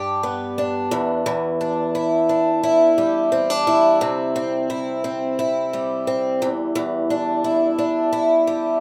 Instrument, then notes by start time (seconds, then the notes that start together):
twelve-string acoustic guitar
Already playing: G2 G3 D4 G4
0.23 B3
0.58 D4
0.91 E2
1.26 E2
1.61 D4
1.95 E4
2.29 D4
2.63 E4
2.98 G3
3.32 C4
3.50 D4
3.67 E4
4.01 C3
4.36 C4
4.70 E4
5.04 C4
5.39 E4
5.73 G3
6.07 C4
6.42 E2
6.75 E2
7.10 D4
7.44 E4
7.79 D4
8.13 E4
8.47 G3